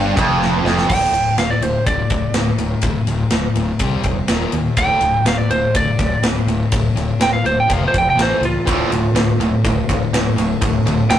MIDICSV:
0, 0, Header, 1, 5, 480
1, 0, Start_track
1, 0, Key_signature, -1, "minor"
1, 0, Tempo, 486224
1, 877, Time_signature, 4, 2, 24, 8
1, 11046, End_track
2, 0, Start_track
2, 0, Title_t, "Lead electric guitar"
2, 0, Program_c, 0, 29
2, 882, Note_on_c, 0, 79, 89
2, 1344, Note_off_c, 0, 79, 0
2, 1367, Note_on_c, 0, 77, 84
2, 1478, Note_off_c, 0, 77, 0
2, 1484, Note_on_c, 0, 74, 78
2, 1609, Note_off_c, 0, 74, 0
2, 1609, Note_on_c, 0, 72, 77
2, 1835, Note_off_c, 0, 72, 0
2, 1845, Note_on_c, 0, 74, 83
2, 2305, Note_off_c, 0, 74, 0
2, 4720, Note_on_c, 0, 79, 95
2, 5183, Note_off_c, 0, 79, 0
2, 5209, Note_on_c, 0, 77, 94
2, 5310, Note_off_c, 0, 77, 0
2, 5310, Note_on_c, 0, 74, 92
2, 5429, Note_off_c, 0, 74, 0
2, 5436, Note_on_c, 0, 72, 85
2, 5668, Note_off_c, 0, 72, 0
2, 5689, Note_on_c, 0, 74, 98
2, 6148, Note_off_c, 0, 74, 0
2, 7131, Note_on_c, 0, 79, 96
2, 7232, Note_off_c, 0, 79, 0
2, 7235, Note_on_c, 0, 77, 91
2, 7352, Note_off_c, 0, 77, 0
2, 7366, Note_on_c, 0, 72, 101
2, 7477, Note_off_c, 0, 72, 0
2, 7502, Note_on_c, 0, 79, 88
2, 7630, Note_off_c, 0, 79, 0
2, 7630, Note_on_c, 0, 77, 84
2, 7730, Note_off_c, 0, 77, 0
2, 7776, Note_on_c, 0, 72, 88
2, 7864, Note_off_c, 0, 72, 0
2, 7879, Note_on_c, 0, 79, 84
2, 7974, Note_off_c, 0, 79, 0
2, 7996, Note_on_c, 0, 79, 94
2, 8093, Note_off_c, 0, 79, 0
2, 8114, Note_on_c, 0, 72, 87
2, 8329, Note_off_c, 0, 72, 0
2, 8343, Note_on_c, 0, 65, 85
2, 9262, Note_off_c, 0, 65, 0
2, 10963, Note_on_c, 0, 79, 111
2, 11046, Note_off_c, 0, 79, 0
2, 11046, End_track
3, 0, Start_track
3, 0, Title_t, "Distorted electric guitar"
3, 0, Program_c, 1, 30
3, 0, Note_on_c, 1, 43, 98
3, 155, Note_off_c, 1, 43, 0
3, 163, Note_on_c, 1, 41, 97
3, 626, Note_off_c, 1, 41, 0
3, 638, Note_on_c, 1, 41, 105
3, 864, Note_off_c, 1, 41, 0
3, 868, Note_on_c, 1, 38, 75
3, 878, Note_on_c, 1, 45, 90
3, 880, Note_on_c, 1, 50, 87
3, 1095, Note_off_c, 1, 38, 0
3, 1103, Note_off_c, 1, 45, 0
3, 1104, Note_off_c, 1, 50, 0
3, 1107, Note_on_c, 1, 38, 61
3, 1119, Note_on_c, 1, 45, 71
3, 1327, Note_off_c, 1, 38, 0
3, 1333, Note_off_c, 1, 45, 0
3, 1356, Note_on_c, 1, 38, 57
3, 1361, Note_on_c, 1, 45, 67
3, 1572, Note_off_c, 1, 38, 0
3, 1574, Note_off_c, 1, 45, 0
3, 1598, Note_on_c, 1, 38, 58
3, 1605, Note_on_c, 1, 45, 68
3, 1813, Note_off_c, 1, 38, 0
3, 1816, Note_off_c, 1, 45, 0
3, 1837, Note_on_c, 1, 38, 74
3, 1847, Note_on_c, 1, 45, 86
3, 2052, Note_off_c, 1, 38, 0
3, 2057, Note_off_c, 1, 45, 0
3, 2076, Note_on_c, 1, 38, 66
3, 2085, Note_on_c, 1, 45, 71
3, 2291, Note_off_c, 1, 38, 0
3, 2296, Note_off_c, 1, 45, 0
3, 2315, Note_on_c, 1, 38, 80
3, 2322, Note_on_c, 1, 45, 81
3, 2531, Note_off_c, 1, 38, 0
3, 2534, Note_off_c, 1, 45, 0
3, 2553, Note_on_c, 1, 38, 61
3, 2559, Note_on_c, 1, 45, 75
3, 2770, Note_off_c, 1, 38, 0
3, 2773, Note_off_c, 1, 45, 0
3, 2804, Note_on_c, 1, 38, 70
3, 2804, Note_on_c, 1, 45, 78
3, 3015, Note_off_c, 1, 38, 0
3, 3015, Note_off_c, 1, 45, 0
3, 3035, Note_on_c, 1, 38, 65
3, 3036, Note_on_c, 1, 45, 70
3, 3251, Note_off_c, 1, 38, 0
3, 3251, Note_off_c, 1, 45, 0
3, 3283, Note_on_c, 1, 38, 61
3, 3287, Note_on_c, 1, 45, 76
3, 3494, Note_off_c, 1, 38, 0
3, 3497, Note_off_c, 1, 45, 0
3, 3516, Note_on_c, 1, 38, 62
3, 3516, Note_on_c, 1, 45, 70
3, 3731, Note_off_c, 1, 38, 0
3, 3731, Note_off_c, 1, 45, 0
3, 3765, Note_on_c, 1, 48, 86
3, 3765, Note_on_c, 1, 55, 96
3, 3782, Note_on_c, 1, 60, 94
3, 3985, Note_off_c, 1, 48, 0
3, 3985, Note_off_c, 1, 55, 0
3, 3994, Note_off_c, 1, 60, 0
3, 4005, Note_on_c, 1, 48, 65
3, 4009, Note_on_c, 1, 55, 75
3, 4215, Note_off_c, 1, 48, 0
3, 4217, Note_off_c, 1, 55, 0
3, 4245, Note_on_c, 1, 39, 90
3, 4246, Note_on_c, 1, 46, 87
3, 4254, Note_on_c, 1, 51, 91
3, 4465, Note_off_c, 1, 39, 0
3, 4466, Note_off_c, 1, 46, 0
3, 4470, Note_off_c, 1, 51, 0
3, 4490, Note_on_c, 1, 39, 64
3, 4490, Note_on_c, 1, 46, 72
3, 4698, Note_off_c, 1, 39, 0
3, 4698, Note_off_c, 1, 46, 0
3, 4722, Note_on_c, 1, 38, 87
3, 4726, Note_on_c, 1, 45, 88
3, 4738, Note_on_c, 1, 50, 97
3, 4944, Note_off_c, 1, 38, 0
3, 4946, Note_off_c, 1, 45, 0
3, 4952, Note_off_c, 1, 50, 0
3, 4962, Note_on_c, 1, 38, 59
3, 4968, Note_on_c, 1, 45, 78
3, 5174, Note_off_c, 1, 38, 0
3, 5177, Note_off_c, 1, 45, 0
3, 5196, Note_on_c, 1, 38, 72
3, 5202, Note_on_c, 1, 45, 75
3, 5411, Note_off_c, 1, 38, 0
3, 5414, Note_off_c, 1, 45, 0
3, 5431, Note_on_c, 1, 38, 64
3, 5434, Note_on_c, 1, 45, 66
3, 5649, Note_off_c, 1, 38, 0
3, 5650, Note_off_c, 1, 45, 0
3, 5670, Note_on_c, 1, 38, 74
3, 5670, Note_on_c, 1, 45, 83
3, 5888, Note_off_c, 1, 45, 0
3, 5889, Note_off_c, 1, 38, 0
3, 5908, Note_on_c, 1, 38, 72
3, 5913, Note_on_c, 1, 45, 72
3, 6127, Note_off_c, 1, 38, 0
3, 6130, Note_off_c, 1, 45, 0
3, 6148, Note_on_c, 1, 38, 73
3, 6155, Note_on_c, 1, 45, 80
3, 6368, Note_off_c, 1, 38, 0
3, 6371, Note_off_c, 1, 45, 0
3, 6394, Note_on_c, 1, 38, 65
3, 6399, Note_on_c, 1, 45, 80
3, 6611, Note_off_c, 1, 38, 0
3, 6613, Note_off_c, 1, 45, 0
3, 6639, Note_on_c, 1, 38, 71
3, 6641, Note_on_c, 1, 45, 71
3, 6853, Note_off_c, 1, 38, 0
3, 6854, Note_off_c, 1, 45, 0
3, 6867, Note_on_c, 1, 38, 70
3, 6871, Note_on_c, 1, 45, 71
3, 7087, Note_off_c, 1, 38, 0
3, 7089, Note_off_c, 1, 45, 0
3, 7104, Note_on_c, 1, 45, 74
3, 7106, Note_on_c, 1, 38, 73
3, 7326, Note_off_c, 1, 45, 0
3, 7327, Note_off_c, 1, 38, 0
3, 7346, Note_on_c, 1, 45, 75
3, 7347, Note_on_c, 1, 38, 68
3, 7567, Note_off_c, 1, 45, 0
3, 7568, Note_off_c, 1, 38, 0
3, 7581, Note_on_c, 1, 41, 82
3, 7595, Note_on_c, 1, 48, 91
3, 7602, Note_on_c, 1, 53, 105
3, 7814, Note_off_c, 1, 41, 0
3, 7821, Note_off_c, 1, 48, 0
3, 7825, Note_off_c, 1, 53, 0
3, 7825, Note_on_c, 1, 41, 64
3, 7834, Note_on_c, 1, 48, 72
3, 8047, Note_off_c, 1, 41, 0
3, 8051, Note_off_c, 1, 48, 0
3, 8065, Note_on_c, 1, 45, 86
3, 8082, Note_on_c, 1, 52, 85
3, 8090, Note_on_c, 1, 57, 98
3, 8297, Note_off_c, 1, 45, 0
3, 8299, Note_off_c, 1, 52, 0
3, 8308, Note_on_c, 1, 45, 69
3, 8309, Note_off_c, 1, 57, 0
3, 8311, Note_on_c, 1, 52, 75
3, 8529, Note_off_c, 1, 45, 0
3, 8530, Note_off_c, 1, 52, 0
3, 8542, Note_on_c, 1, 38, 81
3, 8558, Note_on_c, 1, 45, 89
3, 8561, Note_on_c, 1, 50, 92
3, 8775, Note_off_c, 1, 38, 0
3, 8783, Note_off_c, 1, 45, 0
3, 8785, Note_off_c, 1, 50, 0
3, 8791, Note_on_c, 1, 38, 67
3, 8796, Note_on_c, 1, 45, 75
3, 9010, Note_off_c, 1, 38, 0
3, 9013, Note_off_c, 1, 45, 0
3, 9042, Note_on_c, 1, 38, 75
3, 9045, Note_on_c, 1, 45, 79
3, 9256, Note_off_c, 1, 38, 0
3, 9257, Note_off_c, 1, 45, 0
3, 9280, Note_on_c, 1, 38, 70
3, 9288, Note_on_c, 1, 45, 73
3, 9495, Note_off_c, 1, 38, 0
3, 9499, Note_off_c, 1, 45, 0
3, 9519, Note_on_c, 1, 38, 70
3, 9525, Note_on_c, 1, 45, 88
3, 9735, Note_off_c, 1, 38, 0
3, 9737, Note_off_c, 1, 45, 0
3, 9765, Note_on_c, 1, 38, 65
3, 9770, Note_on_c, 1, 45, 77
3, 9977, Note_off_c, 1, 38, 0
3, 9980, Note_off_c, 1, 45, 0
3, 10014, Note_on_c, 1, 38, 74
3, 10021, Note_on_c, 1, 45, 78
3, 10215, Note_off_c, 1, 38, 0
3, 10224, Note_off_c, 1, 45, 0
3, 10227, Note_on_c, 1, 38, 67
3, 10236, Note_on_c, 1, 45, 69
3, 10449, Note_off_c, 1, 38, 0
3, 10453, Note_off_c, 1, 45, 0
3, 10478, Note_on_c, 1, 38, 75
3, 10489, Note_on_c, 1, 45, 81
3, 10695, Note_off_c, 1, 38, 0
3, 10700, Note_off_c, 1, 45, 0
3, 10728, Note_on_c, 1, 45, 78
3, 10730, Note_on_c, 1, 38, 69
3, 10940, Note_off_c, 1, 45, 0
3, 10941, Note_off_c, 1, 38, 0
3, 10955, Note_on_c, 1, 38, 74
3, 10958, Note_on_c, 1, 45, 70
3, 11046, Note_off_c, 1, 38, 0
3, 11046, Note_off_c, 1, 45, 0
3, 11046, End_track
4, 0, Start_track
4, 0, Title_t, "Fingered electric bass"
4, 0, Program_c, 2, 33
4, 0, Note_on_c, 2, 31, 85
4, 130, Note_off_c, 2, 31, 0
4, 169, Note_on_c, 2, 29, 88
4, 609, Note_off_c, 2, 29, 0
4, 635, Note_on_c, 2, 29, 84
4, 859, Note_off_c, 2, 29, 0
4, 885, Note_on_c, 2, 26, 93
4, 1032, Note_off_c, 2, 26, 0
4, 1103, Note_on_c, 2, 26, 90
4, 1257, Note_off_c, 2, 26, 0
4, 1349, Note_on_c, 2, 26, 84
4, 1501, Note_off_c, 2, 26, 0
4, 1577, Note_on_c, 2, 26, 79
4, 1733, Note_off_c, 2, 26, 0
4, 1840, Note_on_c, 2, 26, 86
4, 1989, Note_off_c, 2, 26, 0
4, 2076, Note_on_c, 2, 26, 83
4, 2226, Note_off_c, 2, 26, 0
4, 2308, Note_on_c, 2, 26, 81
4, 2460, Note_off_c, 2, 26, 0
4, 2544, Note_on_c, 2, 26, 80
4, 2698, Note_off_c, 2, 26, 0
4, 2788, Note_on_c, 2, 26, 91
4, 2940, Note_off_c, 2, 26, 0
4, 3033, Note_on_c, 2, 26, 89
4, 3184, Note_off_c, 2, 26, 0
4, 3269, Note_on_c, 2, 26, 84
4, 3421, Note_off_c, 2, 26, 0
4, 3508, Note_on_c, 2, 26, 78
4, 3660, Note_off_c, 2, 26, 0
4, 3746, Note_on_c, 2, 36, 91
4, 3899, Note_off_c, 2, 36, 0
4, 3986, Note_on_c, 2, 28, 82
4, 4139, Note_off_c, 2, 28, 0
4, 4234, Note_on_c, 2, 27, 84
4, 4385, Note_off_c, 2, 27, 0
4, 4472, Note_on_c, 2, 39, 81
4, 4623, Note_off_c, 2, 39, 0
4, 4705, Note_on_c, 2, 26, 86
4, 4858, Note_off_c, 2, 26, 0
4, 4944, Note_on_c, 2, 26, 91
4, 5098, Note_off_c, 2, 26, 0
4, 5178, Note_on_c, 2, 26, 86
4, 5334, Note_off_c, 2, 26, 0
4, 5414, Note_on_c, 2, 26, 76
4, 5571, Note_off_c, 2, 26, 0
4, 5669, Note_on_c, 2, 26, 97
4, 5821, Note_off_c, 2, 26, 0
4, 5913, Note_on_c, 2, 26, 82
4, 6064, Note_off_c, 2, 26, 0
4, 6140, Note_on_c, 2, 26, 82
4, 6295, Note_off_c, 2, 26, 0
4, 6384, Note_on_c, 2, 26, 89
4, 6538, Note_off_c, 2, 26, 0
4, 6638, Note_on_c, 2, 26, 92
4, 6788, Note_off_c, 2, 26, 0
4, 6860, Note_on_c, 2, 26, 87
4, 7015, Note_off_c, 2, 26, 0
4, 7102, Note_on_c, 2, 26, 86
4, 7257, Note_off_c, 2, 26, 0
4, 7345, Note_on_c, 2, 26, 84
4, 7499, Note_off_c, 2, 26, 0
4, 7594, Note_on_c, 2, 29, 98
4, 7745, Note_off_c, 2, 29, 0
4, 7837, Note_on_c, 2, 29, 85
4, 7987, Note_off_c, 2, 29, 0
4, 8051, Note_on_c, 2, 33, 83
4, 8209, Note_off_c, 2, 33, 0
4, 8301, Note_on_c, 2, 37, 86
4, 8456, Note_off_c, 2, 37, 0
4, 8558, Note_on_c, 2, 26, 91
4, 8708, Note_off_c, 2, 26, 0
4, 8789, Note_on_c, 2, 26, 84
4, 8942, Note_off_c, 2, 26, 0
4, 9023, Note_on_c, 2, 26, 88
4, 9177, Note_off_c, 2, 26, 0
4, 9260, Note_on_c, 2, 26, 82
4, 9416, Note_off_c, 2, 26, 0
4, 9524, Note_on_c, 2, 26, 101
4, 9672, Note_off_c, 2, 26, 0
4, 9758, Note_on_c, 2, 26, 89
4, 9909, Note_off_c, 2, 26, 0
4, 9997, Note_on_c, 2, 26, 88
4, 10148, Note_off_c, 2, 26, 0
4, 10236, Note_on_c, 2, 26, 79
4, 10387, Note_off_c, 2, 26, 0
4, 10483, Note_on_c, 2, 26, 92
4, 10632, Note_off_c, 2, 26, 0
4, 10708, Note_on_c, 2, 26, 89
4, 10862, Note_off_c, 2, 26, 0
4, 10943, Note_on_c, 2, 26, 90
4, 11046, Note_off_c, 2, 26, 0
4, 11046, End_track
5, 0, Start_track
5, 0, Title_t, "Drums"
5, 169, Note_on_c, 9, 36, 115
5, 175, Note_on_c, 9, 51, 72
5, 267, Note_off_c, 9, 36, 0
5, 273, Note_off_c, 9, 51, 0
5, 418, Note_on_c, 9, 38, 63
5, 516, Note_off_c, 9, 38, 0
5, 655, Note_on_c, 9, 38, 90
5, 754, Note_off_c, 9, 38, 0
5, 767, Note_on_c, 9, 38, 79
5, 866, Note_off_c, 9, 38, 0
5, 886, Note_on_c, 9, 36, 117
5, 887, Note_on_c, 9, 49, 111
5, 984, Note_off_c, 9, 36, 0
5, 985, Note_off_c, 9, 49, 0
5, 1124, Note_on_c, 9, 51, 70
5, 1222, Note_off_c, 9, 51, 0
5, 1360, Note_on_c, 9, 51, 88
5, 1363, Note_on_c, 9, 38, 97
5, 1459, Note_off_c, 9, 51, 0
5, 1462, Note_off_c, 9, 38, 0
5, 1603, Note_on_c, 9, 51, 71
5, 1702, Note_off_c, 9, 51, 0
5, 1842, Note_on_c, 9, 36, 103
5, 1843, Note_on_c, 9, 51, 85
5, 1941, Note_off_c, 9, 36, 0
5, 1942, Note_off_c, 9, 51, 0
5, 2072, Note_on_c, 9, 51, 66
5, 2078, Note_on_c, 9, 36, 90
5, 2171, Note_off_c, 9, 51, 0
5, 2177, Note_off_c, 9, 36, 0
5, 2309, Note_on_c, 9, 51, 90
5, 2312, Note_on_c, 9, 38, 107
5, 2408, Note_off_c, 9, 51, 0
5, 2411, Note_off_c, 9, 38, 0
5, 2551, Note_on_c, 9, 51, 68
5, 2650, Note_off_c, 9, 51, 0
5, 2779, Note_on_c, 9, 51, 90
5, 2792, Note_on_c, 9, 36, 109
5, 2878, Note_off_c, 9, 51, 0
5, 2891, Note_off_c, 9, 36, 0
5, 3031, Note_on_c, 9, 51, 63
5, 3130, Note_off_c, 9, 51, 0
5, 3262, Note_on_c, 9, 51, 79
5, 3265, Note_on_c, 9, 38, 105
5, 3361, Note_off_c, 9, 51, 0
5, 3364, Note_off_c, 9, 38, 0
5, 3509, Note_on_c, 9, 51, 61
5, 3608, Note_off_c, 9, 51, 0
5, 3744, Note_on_c, 9, 51, 88
5, 3751, Note_on_c, 9, 36, 101
5, 3843, Note_off_c, 9, 51, 0
5, 3849, Note_off_c, 9, 36, 0
5, 3983, Note_on_c, 9, 51, 62
5, 3991, Note_on_c, 9, 36, 86
5, 4082, Note_off_c, 9, 51, 0
5, 4090, Note_off_c, 9, 36, 0
5, 4225, Note_on_c, 9, 51, 83
5, 4228, Note_on_c, 9, 38, 109
5, 4324, Note_off_c, 9, 51, 0
5, 4327, Note_off_c, 9, 38, 0
5, 4464, Note_on_c, 9, 51, 67
5, 4562, Note_off_c, 9, 51, 0
5, 4706, Note_on_c, 9, 51, 99
5, 4710, Note_on_c, 9, 36, 114
5, 4805, Note_off_c, 9, 51, 0
5, 4808, Note_off_c, 9, 36, 0
5, 4943, Note_on_c, 9, 51, 66
5, 5042, Note_off_c, 9, 51, 0
5, 5190, Note_on_c, 9, 51, 84
5, 5193, Note_on_c, 9, 38, 109
5, 5289, Note_off_c, 9, 51, 0
5, 5292, Note_off_c, 9, 38, 0
5, 5435, Note_on_c, 9, 51, 67
5, 5534, Note_off_c, 9, 51, 0
5, 5674, Note_on_c, 9, 51, 97
5, 5675, Note_on_c, 9, 36, 113
5, 5772, Note_off_c, 9, 51, 0
5, 5774, Note_off_c, 9, 36, 0
5, 5912, Note_on_c, 9, 51, 70
5, 5913, Note_on_c, 9, 36, 91
5, 6011, Note_off_c, 9, 51, 0
5, 6012, Note_off_c, 9, 36, 0
5, 6154, Note_on_c, 9, 51, 100
5, 6157, Note_on_c, 9, 38, 112
5, 6253, Note_off_c, 9, 51, 0
5, 6255, Note_off_c, 9, 38, 0
5, 6400, Note_on_c, 9, 51, 67
5, 6499, Note_off_c, 9, 51, 0
5, 6631, Note_on_c, 9, 51, 98
5, 6636, Note_on_c, 9, 36, 110
5, 6730, Note_off_c, 9, 51, 0
5, 6735, Note_off_c, 9, 36, 0
5, 6880, Note_on_c, 9, 51, 63
5, 6979, Note_off_c, 9, 51, 0
5, 7113, Note_on_c, 9, 51, 84
5, 7116, Note_on_c, 9, 38, 110
5, 7212, Note_off_c, 9, 51, 0
5, 7215, Note_off_c, 9, 38, 0
5, 7362, Note_on_c, 9, 51, 61
5, 7461, Note_off_c, 9, 51, 0
5, 7599, Note_on_c, 9, 36, 106
5, 7601, Note_on_c, 9, 51, 79
5, 7698, Note_off_c, 9, 36, 0
5, 7700, Note_off_c, 9, 51, 0
5, 7839, Note_on_c, 9, 51, 68
5, 7840, Note_on_c, 9, 36, 84
5, 7938, Note_off_c, 9, 51, 0
5, 7939, Note_off_c, 9, 36, 0
5, 8084, Note_on_c, 9, 51, 91
5, 8087, Note_on_c, 9, 38, 110
5, 8183, Note_off_c, 9, 51, 0
5, 8186, Note_off_c, 9, 38, 0
5, 8322, Note_on_c, 9, 51, 67
5, 8421, Note_off_c, 9, 51, 0
5, 8561, Note_on_c, 9, 36, 112
5, 8564, Note_on_c, 9, 51, 96
5, 8660, Note_off_c, 9, 36, 0
5, 8663, Note_off_c, 9, 51, 0
5, 8806, Note_on_c, 9, 51, 69
5, 8905, Note_off_c, 9, 51, 0
5, 9040, Note_on_c, 9, 51, 88
5, 9043, Note_on_c, 9, 38, 103
5, 9138, Note_off_c, 9, 51, 0
5, 9141, Note_off_c, 9, 38, 0
5, 9286, Note_on_c, 9, 51, 66
5, 9385, Note_off_c, 9, 51, 0
5, 9522, Note_on_c, 9, 36, 107
5, 9527, Note_on_c, 9, 51, 90
5, 9621, Note_off_c, 9, 36, 0
5, 9626, Note_off_c, 9, 51, 0
5, 9764, Note_on_c, 9, 36, 84
5, 9769, Note_on_c, 9, 51, 74
5, 9863, Note_off_c, 9, 36, 0
5, 9868, Note_off_c, 9, 51, 0
5, 10010, Note_on_c, 9, 51, 101
5, 10013, Note_on_c, 9, 38, 107
5, 10108, Note_off_c, 9, 51, 0
5, 10111, Note_off_c, 9, 38, 0
5, 10248, Note_on_c, 9, 51, 70
5, 10347, Note_off_c, 9, 51, 0
5, 10482, Note_on_c, 9, 36, 118
5, 10482, Note_on_c, 9, 51, 100
5, 10580, Note_off_c, 9, 36, 0
5, 10581, Note_off_c, 9, 51, 0
5, 10728, Note_on_c, 9, 51, 70
5, 10827, Note_off_c, 9, 51, 0
5, 10961, Note_on_c, 9, 51, 87
5, 10964, Note_on_c, 9, 38, 109
5, 11046, Note_off_c, 9, 38, 0
5, 11046, Note_off_c, 9, 51, 0
5, 11046, End_track
0, 0, End_of_file